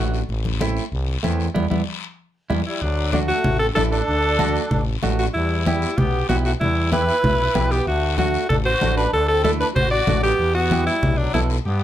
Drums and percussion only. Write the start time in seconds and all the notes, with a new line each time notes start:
0.14 short guiro
0.29 high conga, long guiro
0.45 high conga
0.61 high conga, short guiro
0.77 short guiro
0.92 long guiro
1.09 high conga
1.24 high conga, short guiro
1.40 short guiro
1.55 high conga, long guiro
1.71 high conga, long guiro
2.50 high conga, long guiro
2.82 long guiro
3.13 high conga, short guiro
3.29 short guiro
3.44 low conga, long guiro
3.76 high conga, short guiro
3.93 short guiro
4.08 long guiro
4.39 high conga, short guiro
4.56 short guiro
4.71 low conga, long guiro
5.03 high conga, short guiro
5.19 short guiro
5.35 long guiro
5.66 high conga, short guiro
5.82 short guiro
5.98 low conga, long guiro
6.29 high conga, short guiro
6.45 short guiro
6.61 low conga, long guiro
6.92 high conga, short guiro
7.09 short guiro
7.24 low conga, long guiro
7.55 high conga, short guiro
7.72 short guiro
7.87 long guiro
8.18 high conga, short guiro
8.34 short guiro
8.50 low conga, long guiro
8.81 high conga, short guiro
8.98 short guiro
9.13 long guiro
9.44 high conga, short guiro
9.61 short guiro
9.76 low conga, long guiro
10.07 high conga, low conga, short guiro
10.24 short guiro
10.39 long guiro
10.71 high conga, short guiro
10.87 short guiro
11.03 low conga
11.34 high conga, short guiro
11.50 short guiro
11.65 long guiro